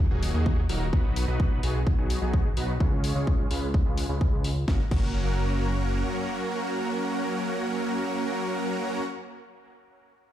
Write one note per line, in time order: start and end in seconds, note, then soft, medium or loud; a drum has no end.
0.11 0.32 D#1 medium
0.11 0.31 F#3 medium
0.11 0.31 A#3 medium
0.11 0.31 D#4 medium
0.11 0.31 F#4 medium
0.11 0.31 G#4 medium
0.23 open hi-hat loud
0.34 0.67 D#2 medium
0.34 0.61 F#3 medium
0.34 0.61 A#3 medium
0.34 0.61 D#4 medium
0.34 0.61 F#4 medium
0.34 0.61 G#4 loud
0.46 kick loud
0.69 0.91 D#1 loud
0.69 0.86 F#3 medium
0.69 0.86 A#3 medium
0.69 0.86 D#4 medium
0.69 0.86 F#4 medium
0.69 0.86 A#4 loud
0.69 open hi-hat medium
0.93 1.26 B1 loud
0.93 1.25 D#4 medium
0.93 kick loud
1.16 open hi-hat loud
1.28 1.61 B1 medium
1.28 1.60 F#3 medium
1.28 1.60 B3 medium
1.28 1.60 D#4 medium
1.28 1.60 F#4 medium
1.28 1.60 B4 loud
1.40 kick loud
1.63 1.96 B1 medium
1.63 1.80 F#3 medium
1.63 1.80 B3 medium
1.63 1.80 D#4 medium
1.63 1.80 F#4 medium
1.63 1.80 G#4 medium
1.63 open hi-hat loud
1.87 kick loud
1.98 2.19 B1 medium
1.98 2.19 F#3 medium
1.98 2.19 B3 medium
1.98 2.19 D#4 medium
1.98 2.19 F#4 medium
1.98 2.19 G#4 medium
2.10 open hi-hat loud
2.22 2.55 B1 medium
2.22 2.48 F#3 medium
2.22 2.48 B3 medium
2.22 2.48 D#4 medium
2.22 2.48 F#4 medium
2.22 2.48 G#4 loud
2.34 kick loud
2.57 2.78 B1 medium
2.57 2.74 F#3 medium
2.57 2.74 B3 medium
2.57 2.74 D#4 medium
2.57 2.74 F#4 medium
2.57 2.74 B4 loud
2.57 open hi-hat medium
2.80 3.13 C#2 loud
2.80 3.13 G#3 medium
2.80 3.13 C#4 medium
2.80 3.13 F4 medium
2.80 3.13 G#4 medium
2.80 3.13 C#5 medium
2.80 kick loud
3.04 open hi-hat loud
3.16 3.48 C#2 medium
3.16 3.48 G#3 medium
3.16 3.48 C#4 medium
3.16 3.48 F4 medium
3.16 3.48 G#4 medium
3.16 3.48 C#5 medium
3.27 kick loud
3.51 3.84 C#2 medium
3.51 3.67 G#3 medium
3.51 3.67 C#4 medium
3.51 3.67 F4 medium
3.51 3.67 G#4 medium
3.51 3.67 B4 medium
3.51 open hi-hat medium
3.74 kick loud
3.86 4.07 C#2 medium
3.86 4.07 G#3 medium
3.86 4.07 C#4 medium
3.86 4.07 F4 medium
3.86 4.07 G#4 medium
3.86 4.07 B4 medium
3.98 open hi-hat loud
4.09 4.30 C#2 medium
4.09 4.29 G#3 medium
4.09 4.29 C#4 medium
4.09 4.29 F4 medium
4.09 4.29 G#4 medium
4.09 4.29 B4 medium
4.21 kick loud
4.33 4.66 C#2 medium
4.33 4.49 G#3 medium
4.33 4.49 C#4 medium
4.33 4.49 F4 medium
4.33 4.49 G#4 medium
4.33 4.49 B4 medium
4.44 open hi-hat medium
4.68 4.81 F#1 medium
4.68 4.81 F#3 medium
4.68 4.81 A#3 medium
4.68 4.81 C#4 medium
4.68 4.81 F#4 medium
4.68 4.81 A#4 medium
4.68 kick loud
4.68 snare medium
4.91 6.05 F#1 loud
4.91 9.04 F#3 medium
4.91 9.04 A#3 medium
4.91 9.04 C#4 medium
4.91 9.04 F#4 medium
4.91 9.04 A#4 medium
4.91 kick loud
4.91 crash medium